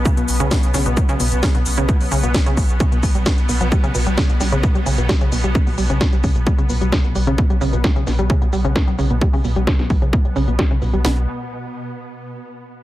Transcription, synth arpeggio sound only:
0.05 0.12 C#3 loud
0.17 0.24 B2 medium
0.40 0.47 C#3 loud
0.51 0.58 B2 medium
0.74 0.81 C#3 loud
0.86 0.92 B2 medium
1.09 1.15 C#3 loud
1.20 1.27 B2 medium
1.43 1.50 C#3 loud
1.55 1.61 B2 medium
1.78 1.84 C#3 loud
1.89 1.95 B2 medium
2.11 2.18 C#3 loud
2.23 2.30 B2 medium
2.46 2.53 C#3 loud
2.57 2.64 B2 medium
2.80 2.87 C#3 loud
2.92 2.98 B2 medium
3.15 3.19 G3 medium
3.26 3.31 B2 medium
3.49 3.53 B2 medium
3.61 3.65 F#3 medium
3.72 3.76 G3 medium
3.84 3.90 C#3 loud
3.95 4.02 B2 medium
4.07 4.11 G3 medium
4.18 4.24 C#3 loud
4.29 4.36 B2 medium
4.40 4.45 G3 medium
4.52 4.59 C#3 loud
4.63 4.70 B2 medium
4.75 4.79 G3 medium
4.86 4.93 C#3 loud
4.98 5.05 B2 medium
5.09 5.14 G3 medium
5.21 5.27 C#3 loud
5.32 5.39 B2 medium
5.44 5.48 G3 medium
5.55 5.62 C#3 loud
5.67 5.73 B2 medium
5.78 5.82 G3 medium
5.90 5.96 C#3 loud
6.01 6.08 B2 medium
6.13 6.17 G3 medium
6.24 6.31 C#3 loud
6.36 6.42 B2 medium
6.47 6.51 G3 medium
6.58 6.65 C#3 loud
6.70 6.76 B2 medium
6.81 6.86 G3 medium
6.92 6.99 C#3 loud
7.04 7.11 B2 medium
7.15 7.20 G3 medium
7.27 7.34 C#3 loud
7.38 7.45 B2 medium
7.50 7.54 G3 medium
7.61 7.68 C#3 loud
7.73 7.79 B2 medium
7.84 7.89 G3 medium
7.96 8.02 C#3 loud
8.07 8.14 B2 medium
8.19 8.23 G3 medium
8.30 8.37 C#3 loud
8.42 8.48 B2 medium
8.53 8.57 G3 medium
8.65 8.71 C#3 medium
8.76 8.82 B2 medium
8.87 8.92 G3 medium
8.99 9.05 C#3 loud
9.10 9.17 B2 medium
9.21 9.26 G3 medium
9.33 9.40 C#3 loud
9.44 9.51 B2 medium
9.56 9.60 G3 medium
9.67 9.74 C#3 loud
9.79 9.85 B2 medium
9.90 9.95 G3 medium
10.02 10.08 C#3 loud
10.13 10.20 B2 medium
10.25 10.29 G3 medium
10.36 10.43 C#3 loud
10.48 10.54 B2 medium
10.59 10.63 G3 medium
10.71 10.77 C#3 loud
10.82 10.89 B2 medium
10.93 10.98 G3 medium
11.05 11.26 B2 medium

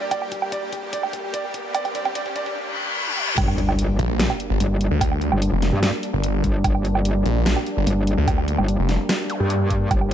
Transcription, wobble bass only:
3.38 3.97 G1 loud
4.60 4.89 G1 loud
5.32 5.51 G1 loud
5.73 5.91 G2 medium
6.44 6.63 G1 loud
6.64 7.24 G1 loud
7.87 8.16 G1 loud
8.59 8.77 G1 loud
9.40 9.89 G2 loud
9.91 10.14 G1 loud

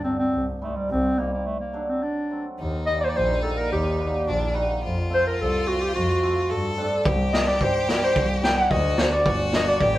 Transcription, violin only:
2.59 4.24 D#4 medium
4.26 4.55 D4 medium
4.54 4.82 D#4 medium
4.83 6.51 F4 loud
6.49 7.06 A4 loud
7.04 8.70 G4 loud
8.70 9.22 F#4 loud
9.26 9.82 F#4 loud
9.80 9.98 G4 loud

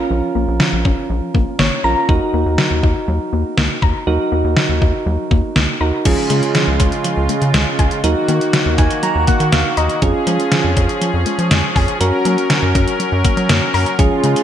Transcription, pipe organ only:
6.05 8.02 C#3 medium
6.05 8.02 G#3 medium
6.05 8.02 F4 medium
8.03 10.00 D#3 medium
8.03 10.00 A#3 medium
8.03 10.00 F#4 medium
10.02 11.99 F3 medium
10.02 13.95 C#4 medium
10.02 11.99 G#4 medium
12.01 13.97 F#3 medium
12.01 13.97 A#4 medium
13.99 14.43 C#3 medium
13.99 14.43 G#3 medium
13.99 14.43 F4 medium

